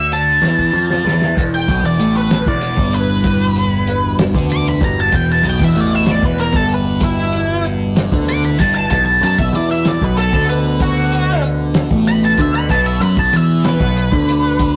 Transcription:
Already playing: picked electric bass D2, distorted electric guitar D3 D4, lead electric guitar E5
0.12 lead electric guitar A5, closed hi-hat
0.42 picked electric bass E2, distorted electric guitar E3 E4, snare
0.59 kick
0.73 picked electric bass F2, distorted electric guitar F3 F4
0.91 snare
1.05 picked electric bass E2, distorted electric guitar E3 E4, snare
1.22 snare
1.35 picked electric bass E1, distorted electric guitar E2 E3, synth drone E2 B2, kick, closed hi-hat
1.54 lead electric guitar G5
1.68 picked electric bass B1, distorted electric guitar B2 B3, kick, closed hi-hat
1.82 picked electric bass E1, distorted electric guitar E2 E3
1.86 lead electric guitar D5
1.98 picked electric bass A1, distorted electric guitar A2 A3, closed hi-hat
2.16 lead electric guitar B4
2.31 snare, closed hi-hat
2.46 picked electric bass E1, distorted electric guitar E2 E3, lead electric guitar D5, kick
2.61 closed hi-hat
2.77 picked electric bass G1, distorted electric guitar G2 G3, kick
2.93 lead electric guitar B4, closed hi-hat
3.24 kick, closed hi-hat
3.56 closed hi-hat
3.87 closed hi-hat
4.19 snare, closed hi-hat
4.34 picked electric bass D2, distorted electric guitar D3 D4, kick
4.50 lead electric guitar D6, closed hi-hat
4.69 lead electric guitar B5
4.81 picked electric bass G1, distorted electric guitar G2 G3, lead electric guitar A#5, kick, closed hi-hat
5.01 lead electric guitar A5
5.12 picked electric bass E1, distorted electric guitar E2 E3, lead electric guitar G5, kick, closed hi-hat
5.32 lead electric guitar A5
5.42 picked electric bass B1, distorted electric guitar B2 B3, closed hi-hat
5.49 lead electric guitar G5
5.60 picked electric bass E1, distorted electric guitar E2 E3, kick
5.64 lead electric guitar E5
5.75 picked electric bass A1, distorted electric guitar A2 A3, closed hi-hat
5.80 lead electric guitar D5
5.95 lead electric guitar E5
6.06 snare, closed hi-hat
6.11 lead electric guitar D5
6.23 picked electric bass E1, distorted electric guitar E2 E3, lead electric guitar B4, kick
6.38 lead electric guitar A#4, closed hi-hat
6.54 picked electric bass G1, distorted electric guitar G2 G3, lead electric guitar A4, kick
6.69 closed hi-hat
6.74 lead electric guitar B4
7.00 lead electric guitar E4, kick, closed hi-hat
7.32 closed hi-hat
7.64 closed hi-hat
7.96 snare, closed hi-hat
8.12 picked electric bass D2, distorted electric guitar D3 D4, kick
8.28 lead electric guitar D6, closed hi-hat
8.45 lead electric guitar B5
8.59 picked electric bass G1, distorted electric guitar G2 G3, lead electric guitar A5, kick, closed hi-hat
8.75 lead electric guitar A5
8.91 picked electric bass B1, distorted electric guitar B2 B3, synth drone B2, lead electric guitar A5, kick, closed hi-hat
9.06 lead electric guitar A5
9.21 picked electric bass F#2, distorted electric guitar F#3 F#4, lead electric guitar A5, closed hi-hat
9.38 picked electric bass B1, distorted electric guitar B2 B3, lead electric guitar E5, kick
9.53 picked electric bass E2, distorted electric guitar E3 E4, lead electric guitar D5, closed hi-hat
9.71 lead electric guitar E5
9.85 lead electric guitar D5, snare, closed hi-hat
10.01 picked electric bass B1, distorted electric guitar B2 B3, lead electric guitar B4, kick
10.17 lead electric guitar A4, closed hi-hat
10.33 picked electric bass D2, distorted electric guitar D3 D4, lead electric guitar A4, kick
10.49 lead electric guitar B4, closed hi-hat
10.80 lead electric guitar F#4, kick, closed hi-hat
11.12 closed hi-hat
11.43 closed hi-hat
11.74 snare, closed hi-hat
11.91 picked electric bass A1, distorted electric guitar A2 A3, kick
12.07 lead electric guitar B5, closed hi-hat
12.25 lead electric guitar A5
12.37 picked electric bass D2, distorted electric guitar D3 D4, lead electric guitar E5, kick, closed hi-hat
12.55 lead electric guitar B5
12.69 picked electric bass B1, distorted electric guitar B2 B3, lead electric guitar A5, kick, closed hi-hat
12.86 lead electric guitar E5
13.00 picked electric bass F#2, distorted electric guitar F#3 F#4, lead electric guitar B5, closed hi-hat
13.17 picked electric bass B1, distorted electric guitar B2 B3, lead electric guitar A5, kick
13.33 picked electric bass E2, distorted electric guitar E3 E4, closed hi-hat
13.37 lead electric guitar E5
13.64 lead electric guitar B4, snare, closed hi-hat
13.80 picked electric bass B1, distorted electric guitar B2 B3, kick
13.97 closed hi-hat
14.12 picked electric bass D2, distorted electric guitar D3 D4, kick
14.29 closed hi-hat
14.59 kick, closed hi-hat

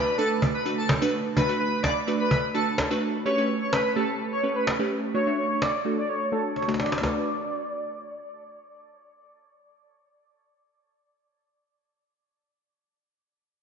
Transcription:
Already playing: digital synth lead B4
0.18 synth pluck A3 D4 F#4 B4, digital synth lead A4
0.42 cajon bass
0.54 digital synth lead B4
0.66 synth pluck A3 D4 F#4 B4
0.78 digital synth lead A4
0.89 cajon bass, cajon slap
1.02 synth pluck A3 D4 F#4 B4
1.36 synth pluck A3 D4 F#4 B4, digital synth lead B4, cajon bass
1.49 synth pluck A3 D4 F#4 B4
1.60 digital synth lead B4
1.83 digital synth lead D5, cajon bass, cajon slap
2.07 synth pluck A3 D4 F#4 B4
2.19 digital synth lead B4
2.31 cajon bass
2.54 synth pluck A3 D4 F#4 B4, digital synth lead A4
2.78 cajon bass, cajon slap
2.90 synth pluck A3 D4 F#4 B4
3.25 synth pluck A3 C#4 G4 B4, digital synth lead C#5
3.38 synth pluck A3 C#4 G4 B4
3.62 digital synth lead C#5
3.73 digital synth lead B4, cajon slap
3.96 synth pluck A3 C#4 G4 B4, digital synth lead A4
4.32 digital synth lead C#5
4.43 synth pluck A3 C#4 G4 B4
4.56 digital synth lead B4
4.67 cajon slap
4.79 synth pluck A3 C#4 G4 B4
5.14 synth pluck A3 D4 F#4 C#5, digital synth lead C#5
5.27 synth pluck A3 D4 F#4 E5
5.38 digital synth lead C#5
5.62 digital synth lead D5, cajon slap
5.85 synth pluck A3 D4 F#4 A4
5.98 digital synth lead D5
6.09 digital synth lead C#5
6.32 synth pluck A3 D4 F#4 C#5, digital synth lead A4
6.56 digital synth lead C#5, cajon slap
6.62 cajon slap
6.68 synth pluck A3 D4 F#4 C#5, cajon slap
6.74 cajon slap
6.80 digital synth lead D5, cajon slap
6.86 cajon slap
6.92 cajon slap
6.98 synth pluck A3, cajon slap
7.02 synth pluck D4 F#4 B4, digital synth lead D5, cajon bass, cajon slap

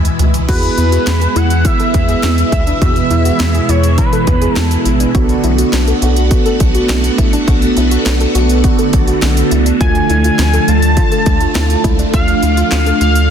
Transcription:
Already playing: analog synth bass D2, string machine B2 E3 G#3 E4
0.05 closed hi-hat
0.19 analog synth bass D2, closed hi-hat, floor tom
0.34 closed hi-hat, floor tom
0.49 analog synth bass E2, string machine B2 E3 G#3 E4, analog polysynth B3 E4 G#4 B4, synth pluck F#4, analog synth lead B4, kick, closed hi-hat, crash
0.63 closed hi-hat
0.78 analog synth bass E2, synth pluck E4, closed hi-hat
0.92 synth pluck F#4, closed hi-hat
1.07 analog synth bass E2, snare, closed hi-hat
1.21 synth pluck G#4, closed hi-hat
1.36 analog synth bass E2, synth pluck E4, analog synth lead F#5, closed hi-hat
1.50 closed hi-hat
1.65 synth pluck E4, analog synth lead E5, kick, closed hi-hat
1.80 synth pluck A4, closed hi-hat
1.94 analog synth bass E2, kick, closed hi-hat
2.09 synth pluck G#4, closed hi-hat
2.23 analog synth bass E2, synth pluck E4, snare, closed hi-hat
2.38 closed hi-hat
2.52 analog synth bass D2, synth pluck E4, analog synth lead E5, kick, closed hi-hat
2.67 synth pluck D4, closed hi-hat
2.82 analog synth bass E2, synth pluck F#4, kick, closed hi-hat
2.96 closed hi-hat
3.11 analog synth bass E2, synth pluck E4, closed hi-hat
3.25 synth pluck F#4, closed hi-hat
3.40 analog synth bass E2, snare, closed hi-hat
3.54 synth pluck G#4, closed hi-hat
3.69 analog synth bass E2, synth pluck E4, analog synth lead C#5, closed hi-hat
3.83 closed hi-hat
3.98 synth pluck E4, analog synth lead B4, kick, closed hi-hat
4.13 synth pluck A4, closed hi-hat
4.27 analog synth bass E2, kick, closed hi-hat
4.42 synth pluck G#4, closed hi-hat
4.56 analog synth bass E2, synth pluck E4, analog synth lead A4, snare, closed hi-hat
4.71 closed hi-hat
4.85 analog synth bass A1, synth pluck E4, closed hi-hat
5.00 synth pluck D4, closed hi-hat
5.15 analog synth bass B1, string machine D3 A3 B3 F#4, analog polysynth B3 D4 F#4 A4, synth pluck F#4, kick, closed hi-hat
5.29 closed hi-hat
5.44 analog synth bass B1, synth pluck E4, closed hi-hat
5.58 synth pluck F#4, closed hi-hat
5.73 analog synth bass B1, snare, closed hi-hat
5.87 synth pluck A4, closed hi-hat
6.02 analog synth bass B1, synth pluck F#4, closed hi-hat
6.16 closed hi-hat
6.31 synth pluck F#4, kick, closed hi-hat
6.46 synth pluck A4, closed hi-hat
6.60 analog synth bass B1, kick, closed hi-hat
6.75 synth pluck F#4, closed hi-hat
6.89 analog synth bass B1, synth pluck E4, snare, closed hi-hat
7.04 closed hi-hat
7.18 analog synth bass A1, synth pluck E4, kick, closed hi-hat
7.33 synth pluck D4, closed hi-hat
7.48 analog synth bass B1, synth pluck F#4, kick, closed hi-hat
7.62 closed hi-hat
7.77 analog synth bass B1, synth pluck E4, closed hi-hat
7.91 synth pluck F#4, closed hi-hat
8.06 analog synth bass B1, snare, closed hi-hat
8.20 synth pluck A4, closed hi-hat
8.35 analog synth bass B1, synth pluck F#4, closed hi-hat
8.49 closed hi-hat
8.64 synth pluck F#4, kick, closed hi-hat
8.79 synth pluck A4, closed hi-hat
8.93 analog synth bass B1, kick, closed hi-hat
9.07 synth pluck F#4, closed hi-hat
9.22 analog synth bass B1, synth pluck E4, snare, closed hi-hat
9.37 closed hi-hat
9.51 analog synth bass C#2, synth pluck E4, closed hi-hat
9.66 synth pluck D4, closed hi-hat
9.81 analog synth bass D2, string machine F3 F4, analog polysynth A3 D4 F4 A4, synth pluck F4, analog synth lead G#5, kick, closed hi-hat
9.95 closed hi-hat
10.10 analog synth bass D2, synth pluck E4, closed hi-hat
10.24 synth pluck F4, closed hi-hat
10.39 analog synth bass D2, snare, closed hi-hat
10.53 synth pluck A4, closed hi-hat
10.68 analog synth bass D2, synth pluck F4, analog synth lead A5, closed hi-hat
10.82 closed hi-hat
10.97 synth pluck F4, kick, closed hi-hat
11.12 synth pluck A4, closed hi-hat
11.26 analog synth bass D2, kick, closed hi-hat
11.40 synth pluck F4, closed hi-hat
11.55 analog synth bass D2, synth pluck E4, snare, closed hi-hat
11.70 closed hi-hat
11.84 analog synth bass C#2, synth pluck E4, kick, closed hi-hat
11.99 synth pluck D4, closed hi-hat
12.14 analog synth bass D2, string machine D4, synth pluck F4, analog synth lead F5, kick, closed hi-hat
12.28 closed hi-hat
12.43 analog synth bass D2, synth pluck E4, closed hi-hat
12.57 synth pluck F4, closed hi-hat
12.72 analog synth bass D2, analog synth lead F5, snare, clap, closed hi-hat
12.86 synth pluck A4, closed hi-hat
13.01 analog synth bass D2, synth pluck F4, analog synth lead F5, closed hi-hat
13.15 closed hi-hat

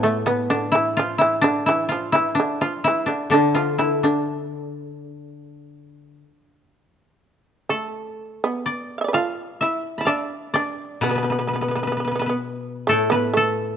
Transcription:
Already playing: koto A2 B3
0.03 shamisen A3, koto A3
0.26 koto B3, shamisen B3
0.50 shamisen D3, koto D4
0.72 shamisen E3, koto E4
0.97 shamisen F3, koto F4
1.18 shamisen E3, koto E4
1.41 shamisen D3, koto D4
1.66 shamisen E3, koto E4
1.89 shamisen F3, koto F4
2.12 shamisen E3, koto E4
2.35 koto D4
2.40 shamisen D3
2.61 shamisen F3, koto F4
2.84 shamisen E3, koto E4
3.06 shamisen D3, koto D4
3.30 koto D3 D4, shamisen D3
3.55 shamisen F3, koto F4
3.78 shamisen E3, koto E4
4.03 shamisen D3, koto D4
7.69 shamisen A3, koto A4
8.44 shamisen B3
8.66 koto D5
8.98 shamisen E5 F5
9.04 shamisen D5
9.08 shamisen B4
9.13 shamisen F4 A4, koto F5
9.61 shamisen E4, koto E5
9.98 shamisen E4, koto A5 B5
10.05 shamisen D4, koto D5 E5 F5
10.54 shamisen D4, koto D5
11.01 koto B2 B4, shamisen B3
11.09 shamisen B3, koto B4
11.15 shamisen B3, koto B4
11.23 shamisen B3, koto B4
11.30 shamisen B3, koto B4
11.38 shamisen B3, koto B4
11.47 shamisen B3, koto B4
11.53 shamisen B3, koto B4
11.61 shamisen B3, koto B4
11.68 shamisen B3, koto B4
11.75 shamisen B3, koto B4
11.83 shamisen B3, koto B4
11.87 koto B4
11.92 shamisen B3
11.97 shamisen B3, koto B4
12.05 shamisen B3, koto B4
12.11 koto B4
12.16 shamisen B3, koto B4
12.22 shamisen B3
12.26 shamisen B3, koto B4
12.87 koto A2 A4, shamisen A3
13.10 shamisen B3, koto B4
13.34 shamisen A3, koto A4

